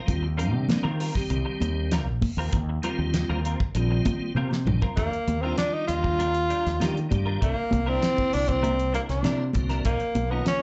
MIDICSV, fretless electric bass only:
0, 0, Header, 1, 3, 480
1, 0, Start_track
1, 0, Key_signature, -3, "major"
1, 0, Tempo, 610998
1, 64, Time_signature, 4, 2, 24, 8
1, 8343, End_track
2, 0, Start_track
2, 0, Title_t, "Fretless electric bass"
2, 0, Program_c, 0, 35
2, 63, Note_on_c, 0, 39, 89
2, 420, Note_off_c, 0, 39, 0
2, 420, Note_on_c, 0, 48, 82
2, 521, Note_off_c, 0, 48, 0
2, 664, Note_on_c, 0, 51, 76
2, 863, Note_off_c, 0, 51, 0
2, 1024, Note_on_c, 0, 36, 100
2, 1124, Note_off_c, 0, 36, 0
2, 1266, Note_on_c, 0, 39, 89
2, 1626, Note_off_c, 0, 39, 0
2, 1626, Note_on_c, 0, 34, 83
2, 1724, Note_off_c, 0, 34, 0
2, 1862, Note_on_c, 0, 39, 83
2, 1961, Note_off_c, 0, 39, 0
2, 1988, Note_on_c, 0, 39, 88
2, 2185, Note_off_c, 0, 39, 0
2, 2346, Note_on_c, 0, 39, 88
2, 2544, Note_off_c, 0, 39, 0
2, 2589, Note_on_c, 0, 39, 80
2, 2786, Note_off_c, 0, 39, 0
2, 2944, Note_on_c, 0, 34, 99
2, 3142, Note_off_c, 0, 34, 0
2, 3415, Note_on_c, 0, 48, 82
2, 3657, Note_on_c, 0, 34, 81
2, 3669, Note_off_c, 0, 48, 0
2, 3759, Note_off_c, 0, 34, 0
2, 3905, Note_on_c, 0, 39, 75
2, 4004, Note_off_c, 0, 39, 0
2, 4144, Note_on_c, 0, 39, 76
2, 4342, Note_off_c, 0, 39, 0
2, 4625, Note_on_c, 0, 39, 74
2, 5124, Note_off_c, 0, 39, 0
2, 5235, Note_on_c, 0, 39, 79
2, 5329, Note_off_c, 0, 39, 0
2, 5354, Note_on_c, 0, 51, 87
2, 5549, Note_off_c, 0, 51, 0
2, 5588, Note_on_c, 0, 43, 76
2, 5785, Note_off_c, 0, 43, 0
2, 5829, Note_on_c, 0, 36, 84
2, 5926, Note_off_c, 0, 36, 0
2, 6070, Note_on_c, 0, 36, 77
2, 6266, Note_off_c, 0, 36, 0
2, 6557, Note_on_c, 0, 36, 72
2, 7050, Note_off_c, 0, 36, 0
2, 7143, Note_on_c, 0, 36, 75
2, 7242, Note_off_c, 0, 36, 0
2, 7264, Note_on_c, 0, 48, 77
2, 7462, Note_off_c, 0, 48, 0
2, 7504, Note_on_c, 0, 36, 67
2, 7702, Note_off_c, 0, 36, 0
2, 7740, Note_on_c, 0, 35, 78
2, 7841, Note_off_c, 0, 35, 0
2, 7973, Note_on_c, 0, 35, 79
2, 8176, Note_off_c, 0, 35, 0
2, 8343, End_track
3, 0, Start_track
3, 0, Title_t, "Muted fretless electric bass strokes"
3, 541, Note_on_c, 9, 29, 35
3, 620, Note_off_c, 9, 29, 0
3, 1743, Note_on_c, 9, 29, 35
3, 1822, Note_off_c, 9, 29, 0
3, 4029, Note_on_c, 9, 29, 27
3, 4108, Note_off_c, 9, 29, 0
3, 5957, Note_on_c, 9, 29, 30
3, 6035, Note_off_c, 9, 29, 0
3, 8343, End_track
0, 0, End_of_file